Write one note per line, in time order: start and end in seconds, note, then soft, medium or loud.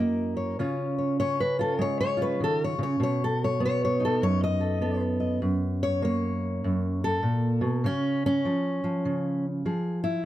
0.00 0.57 F#2 medium
0.00 0.56 A#3 medium
0.00 0.56 E4 medium
0.00 0.56 A#4 medium
0.00 0.36 D#5 medium
0.37 0.56 C#5 medium
0.59 2.77 C#3 medium
0.59 1.20 C#4 soft
0.59 1.58 F4 soft
0.59 0.97 C#5 soft
0.98 1.18 C#5 soft
1.20 2.98 C#4 medium
1.20 1.40 C#5 loud
1.40 1.60 B4 medium
1.59 2.16 F4 soft
1.59 1.80 A4 medium
1.79 2.39 G#3 medium
1.79 1.99 C#5 loud
2.01 2.20 C#5 loud
2.17 2.97 F4 soft
2.22 2.41 B4 loud
2.40 2.78 D#3 medium
2.40 2.62 A4 loud
2.64 2.82 C#5 medium
2.79 2.99 C#3 medium
2.83 3.02 C#5 loud
3.00 4.21 B2 medium
3.00 3.22 C#5 medium
3.24 3.42 A4 medium
3.44 3.62 C#5 medium
3.60 4.80 B3 medium
3.65 3.83 C#5 loud
3.85 4.03 C#5 medium
4.00 5.40 D#4 soft
4.05 4.23 A4 medium
4.22 5.41 F#2 medium
4.22 4.42 C#5 loud
4.44 5.03 D#5 loud
4.60 4.81 A4 soft
4.81 5.39 B3 medium
4.81 5.39 A4 soft
5.20 5.39 D#5 soft
5.42 6.63 F#2 medium
5.83 6.04 C#5 loud
6.02 7.81 A#3 medium
6.02 7.02 C#5 medium
6.64 7.22 F#2 medium
7.04 7.85 A4 loud
7.23 7.61 A#2 medium
7.61 7.83 B2 medium
7.84 8.44 C#3 medium
7.84 8.23 C#4 loud
8.26 9.45 C#4 loud
8.45 8.83 F3 medium
8.84 9.64 F3 soft
9.05 9.65 C#3 medium
9.66 10.23 F3 medium
9.66 10.03 G#4 soft
10.04 10.25 E4 loud